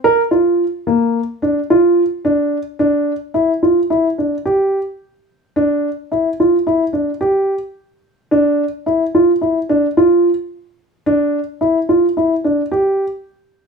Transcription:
0.04 0.20 A#4 medium
0.31 0.63 F4 medium
0.87 1.19 A#3 medium
1.42 1.58 D4 medium
1.70 2.02 F4 medium
2.25 2.56 D4 medium
2.79 3.11 D4 medium
3.34 3.50 E4 medium
3.63 3.79 F4 medium
3.90 4.06 E4 medium
4.18 4.34 D4 medium
4.46 4.77 G4 medium
5.56 5.88 D4 medium
6.12 6.27 E4 medium
6.40 6.55 F4 medium
6.67 6.82 E4 medium
6.93 7.09 D4 medium
7.21 7.52 G4 medium
8.31 8.63 D4 medium
8.86 9.02 E4 medium
9.15 9.30 F4 medium
9.41 9.57 E4 medium
9.69 9.85 D4 medium
9.97 10.29 F4 medium
11.06 11.38 D4 medium
11.61 11.77 E4 medium
11.89 12.05 F4 medium
12.17 12.33 E4 medium
12.44 12.60 D4 medium
12.72 13.03 G4 medium

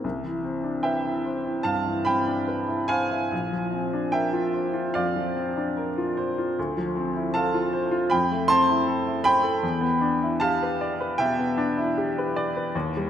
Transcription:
0.04 1.61 C2 soft
0.24 0.56 E3 soft
0.44 0.77 C4 soft
0.64 0.96 D4 soft
0.83 1.17 B4 soft
0.83 1.61 E5 soft
0.83 1.64 G5 medium
1.05 1.37 E4 soft
1.25 1.57 C5 soft
1.45 1.77 E4 soft
1.63 1.98 G2 soft
1.63 2.03 F5 medium
1.63 2.06 A5 medium
1.86 2.19 E3 soft
2.05 2.40 C4 soft
2.05 2.86 G5 medium
2.05 2.89 B5 medium
2.27 2.61 D4 soft
2.48 2.81 B4 soft
2.68 3.02 E4 soft
2.88 3.23 C5 soft
2.88 4.10 F5 medium
2.88 4.13 G#5 medium
3.11 3.32 E4 soft
3.32 4.91 A#1 soft
3.53 3.86 F3 soft
3.72 4.05 C4 soft
3.93 4.26 D4 soft
4.12 4.46 A#4 soft
4.12 4.91 E5 medium
4.12 4.94 G5 medium
4.33 4.66 F4 soft
4.54 4.87 C5 soft
4.73 5.07 F4 soft
4.94 5.29 F2 soft
4.94 6.13 D5 medium
4.94 6.17 F5 medium
5.16 5.49 F3 soft
5.36 5.69 C4 soft
5.57 5.89 D4 soft
5.77 6.09 A#4 soft
5.98 6.30 F4 soft
6.17 6.49 C5 medium
6.38 6.58 F4 soft
6.59 8.08 D2 medium
6.77 7.08 F3 soft
6.96 7.27 C4 soft
7.16 7.47 E4 soft
7.34 7.66 A4 soft
7.34 8.07 F5 medium
7.34 8.11 A5 medium
7.54 7.85 F4 soft
7.73 8.04 C5 medium
7.91 8.11 F4 medium
8.10 9.59 F2 medium
8.10 8.46 G5 medium
8.10 8.48 B5 medium
8.31 8.61 A3 soft
8.48 8.80 C4 soft
8.48 9.20 A5 medium
8.48 9.23 C6 loud
8.69 8.98 E4 soft
8.87 9.17 A4 soft
9.06 9.36 E4 soft
9.24 9.56 C5 medium
9.24 10.38 G5 medium
9.24 10.41 B5 loud
9.43 9.62 A4 soft
9.63 11.15 E2 medium
9.81 10.13 B3 medium
10.01 10.33 D4 soft
10.23 10.54 E4 medium
10.40 10.73 G4 soft
10.40 11.15 F5 medium
10.40 11.18 A5 medium
10.62 10.93 B4 soft
10.81 11.12 D5 soft
11.00 11.31 B4 medium
11.18 11.50 B2 soft
11.18 12.32 E5 medium
11.18 12.35 G5 medium
11.39 11.70 B3 soft
11.58 11.89 D4 medium
11.77 12.08 E4 soft
11.98 12.28 G4 medium
12.18 12.48 B4 medium
12.36 12.67 D5 medium
12.56 12.75 B4 soft
12.75 13.10 D#2 medium
12.97 13.10 G3 medium

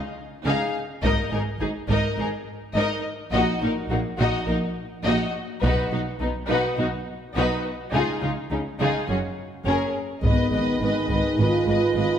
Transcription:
0.45 0.53 C#2 medium
0.45 0.54 C#3 medium
0.45 0.72 D#4 soft
0.45 0.73 G#4 medium
0.45 0.73 F5 soft
1.02 1.12 G#1 medium
1.02 1.12 G#2 medium
1.02 1.30 D#4 medium
1.02 1.30 A#4 medium
1.02 1.29 D#5 medium
1.02 taiko soft
1.32 1.40 G#1 soft
1.32 1.40 G#2 soft
1.32 1.40 D#4 soft
1.32 1.41 G#4 soft
1.32 1.40 A#4 soft
1.60 1.68 G#1 soft
1.60 1.69 G#2 soft
1.60 1.69 D#4 soft
1.60 1.68 G#4 soft
1.89 1.97 G#1 medium
1.89 1.97 G#2 medium
1.89 2.16 D#4 soft
1.89 2.16 A#4 medium
1.89 2.17 D#5 soft
1.89 taiko soft
2.18 2.26 G#1 soft
2.18 2.26 G#2 soft
2.18 2.26 D#4 soft
2.18 2.28 G#4 soft
2.18 2.27 A#4 soft
2.75 2.83 G#1 medium
2.75 2.83 G#2 medium
2.75 3.03 D#4 medium
2.75 3.03 A#4 medium
2.75 3.03 D#5 medium
3.32 3.40 A#1 medium
3.32 3.42 A#2 medium
3.32 3.60 D#4 soft
3.32 3.60 F#4 medium
3.32 3.60 D#5 soft
3.61 3.69 A#1 soft
3.61 3.71 A#2 soft
3.61 3.70 D#4 soft
3.61 3.71 D#4 soft
3.61 3.71 A#4 soft
3.89 3.97 A#1 soft
3.89 3.99 A#2 soft
3.89 4.00 A#3 soft
3.89 3.99 D#4 soft
3.89 3.98 F#4 soft
4.19 4.27 A#1 medium
4.19 4.28 A#2 medium
4.19 4.46 D#4 medium
4.19 4.47 F#4 medium
4.19 4.46 D#5 medium
4.46 4.56 A#1 soft
4.46 4.57 A#2 soft
4.46 4.57 D#4 soft
4.46 4.54 A#4 soft
5.04 5.13 A#1 medium
5.04 5.14 A#2 medium
5.04 5.32 D#4 medium
5.04 5.33 F#4 medium
5.04 5.31 D#5 medium
5.63 5.71 B1 medium
5.63 5.72 B2 medium
5.63 5.90 D#4 medium
5.63 5.90 F#4 medium
5.63 5.90 B4 medium
5.63 taiko medium
5.92 6.00 B1 soft
5.92 6.00 B2 soft
5.92 6.00 D#4 soft
5.92 6.01 D#4 soft
5.92 6.00 F#4 soft
6.20 6.29 B1 soft
6.20 6.29 B2 soft
6.20 6.31 B3 soft
6.20 6.28 D#4 soft
6.20 6.30 D#4 soft
6.49 6.57 B1 medium
6.49 6.57 B2 medium
6.49 6.76 D#4 medium
6.49 6.77 F#4 medium
6.49 6.76 B4 medium
6.78 6.86 B1 soft
6.78 6.87 B2 soft
6.78 6.87 D#4 soft
6.78 6.87 F#4 soft
7.36 7.44 B1 medium
7.36 7.44 B2 soft
7.36 7.63 D#4 medium
7.36 7.63 F#4 medium
7.36 7.63 B4 medium
7.93 8.01 C#2 medium
7.93 8.01 C#3 medium
7.93 8.20 D#4 medium
7.93 8.20 F4 medium
7.93 8.20 G#4 medium
8.21 8.32 C#2 soft
8.21 8.30 C#3 soft
8.21 8.30 D#4 soft
8.21 8.29 F4 soft
8.51 8.60 C#2 soft
8.51 8.59 C#3 soft
8.51 8.61 C#4 soft
8.51 8.59 D#4 soft
8.80 8.88 C#2 medium
8.80 8.88 C#3 medium
8.80 9.06 D#4 soft
8.80 9.07 F4 soft
8.80 9.07 G#4 soft
9.08 9.17 F#1 soft
9.08 9.16 F#2 soft
9.08 9.17 C#4 soft
9.08 9.18 F#4 soft
9.08 9.17 G#4 soft
9.66 9.74 F#1 soft
9.66 9.74 F#2 soft
9.66 9.93 C#4 soft
9.66 9.94 G#4 soft
9.66 9.93 A#4 soft
10.23 10.31 G#1 soft
10.23 10.34 G#1 soft
10.23 10.32 G#2 soft
10.23 12.19 D#3 soft
10.23 12.19 G#3 soft
10.23 10.77 B3 medium
10.23 10.51 B4 soft
10.23 10.52 D#5 soft
10.23 taiko medium
10.51 10.63 G#1 soft
10.51 10.60 G#1 soft
10.51 10.60 G#2 soft
10.51 10.80 B4 soft
10.51 10.81 D#5 soft
10.81 10.92 G#1 soft
10.81 10.89 G#1 soft
10.81 10.89 G#2 soft
10.81 11.39 D#4 medium
10.81 11.09 B4 soft
10.81 11.10 D#5 soft
11.10 11.18 G#1 soft
11.10 11.22 G#1 soft
11.10 11.18 G#2 soft
11.10 11.37 B4 soft
11.10 11.38 D#5 soft
11.10 11.39 D#5 soft
11.10 taiko soft
11.38 11.46 G#1 soft
11.38 11.50 G#1 soft
11.38 11.46 G#2 soft
11.38 12.19 F4 medium
11.38 11.67 B4 soft
11.38 11.67 D#5 soft
11.38 11.68 D#5 soft
11.66 11.75 G#1 soft
11.66 11.79 G#1 soft
11.66 11.74 G#2 soft
11.66 11.95 B4 soft
11.66 11.96 D#5 soft
11.95 12.03 G#1 soft
11.95 12.08 G#1 soft
11.95 12.03 G#2 soft
11.95 12.19 B4 soft
11.95 12.19 D#5 soft

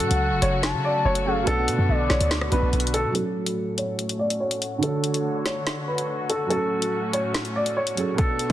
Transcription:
0.00 0.10 A2 loud
0.00 1.45 C#3 medium
0.00 1.21 F#3 medium
0.00 1.45 F#3 medium
0.00 3.12 A3 medium
0.00 1.22 C#4 medium
0.00 1.24 F#4 medium
0.00 3.11 F#4 loud
0.00 0.38 A4 loud
0.00 1.25 A4 medium
0.00 0.59 F#5 loud
0.00 closed hi-hat medium
0.11 0.33 C#2 loud
0.11 closed hi-hat medium
0.32 0.42 F1 loud
0.42 0.75 F#1 loud
0.42 0.81 C#5 medium
0.42 closed hi-hat medium
0.63 1.22 A5 loud
0.63 snare loud
0.63 closed hi-hat medium
0.74 0.84 C#3 loud
0.85 1.02 D5 medium
1.05 1.45 F#1 loud
1.05 1.45 C#5 medium
1.15 closed hi-hat medium
1.24 1.46 F#3 medium
1.24 1.47 C#4 medium
1.24 1.47 G#4 soft
1.24 1.46 F5 medium
1.28 1.48 A4 medium
1.43 2.48 B2 medium
1.43 2.49 B3 medium
1.47 1.69 B1 loud
1.47 3.13 D3 medium
1.47 3.13 B3 medium
1.47 2.51 D4 medium
1.47 2.06 A4 loud
1.47 1.87 F#5 loud
1.47 closed hi-hat medium
1.51 2.52 A4 medium
1.68 1.78 B2 loud
1.68 closed hi-hat medium
1.78 1.89 F#2 loud
1.89 2.09 B1 loud
1.89 2.69 D5 loud
2.09 2.20 B1 loud
2.09 2.49 C#5 medium
2.09 snare medium
2.20 2.51 D2 loud
2.20 closed hi-hat medium
2.31 snare loud
2.31 closed hi-hat medium
2.41 cross-stick loud
2.50 2.62 B1 loud
2.50 3.14 B2 medium
2.50 3.15 B3 soft
2.50 3.15 D4 soft
2.50 2.91 B4 medium
2.50 closed hi-hat medium
2.54 3.15 F#4 medium
2.62 2.73 B1 loud
2.73 3.06 B1 loud
2.73 closed hi-hat soft
2.80 closed hi-hat medium
2.87 closed hi-hat medium
2.94 3.12 A4 medium
2.94 closed hi-hat medium
3.04 3.14 B2 loud
3.11 4.77 F#3 medium
3.11 4.79 C#4 medium
3.15 4.81 A2 medium
3.15 4.81 A3 medium
3.15 4.81 C#4 medium
3.15 8.14 F#4 medium
3.15 4.80 F#4 medium
3.15 3.74 A4 loud
3.15 closed hi-hat medium
3.19 4.82 A4 medium
3.46 closed hi-hat medium
3.78 4.17 C#5 medium
3.78 closed hi-hat medium
3.99 closed hi-hat medium
4.09 closed hi-hat medium
4.19 4.37 D5 medium
4.30 closed hi-hat medium
4.40 4.80 C#5 medium
4.51 closed hi-hat medium
4.62 closed hi-hat medium
4.78 6.45 D3 medium
4.78 6.46 D4 medium
4.83 6.49 D3 medium
4.83 6.49 A3 medium
4.83 6.48 F#4 medium
4.83 5.42 A4 loud
4.83 6.49 C#5 medium
4.83 closed hi-hat medium
4.87 6.49 C#5 medium
5.04 closed hi-hat medium
5.14 closed hi-hat medium
5.46 5.85 C#5 medium
5.46 snare medium
5.46 closed hi-hat medium
5.67 snare loud
5.67 closed hi-hat medium
5.88 6.27 B4 medium
5.98 closed hi-hat medium
6.30 6.48 A4 medium
6.30 closed hi-hat medium
6.46 7.92 F#3 medium
6.46 7.94 C#4 medium
6.46 7.10 A4 loud
6.51 8.17 A2 medium
6.51 8.17 A3 medium
6.51 8.17 C#4 medium
6.51 7.95 F#4 medium
6.51 closed hi-hat medium
6.55 7.97 A4 medium
6.82 closed hi-hat medium
7.13 7.53 C#5 medium
7.13 closed hi-hat medium
7.34 snare loud
7.34 closed hi-hat medium
7.45 closed hi-hat medium
7.56 7.74 D5 medium
7.66 closed hi-hat medium
7.77 8.16 C#5 medium
7.87 closed hi-hat medium
7.95 8.17 F#3 soft
7.95 8.18 C#4 soft
7.95 8.19 G#4 soft
7.95 closed hi-hat medium
7.99 8.19 A4 medium
8.14 8.52 B2 medium
8.14 8.52 B3 medium
8.18 8.52 B2 medium
8.18 8.52 A3 medium
8.18 8.52 D4 medium
8.18 8.52 F#4 medium
8.18 8.52 A4 loud
8.18 kick loud
8.18 closed hi-hat medium
8.23 8.52 A4 medium
8.39 closed hi-hat medium

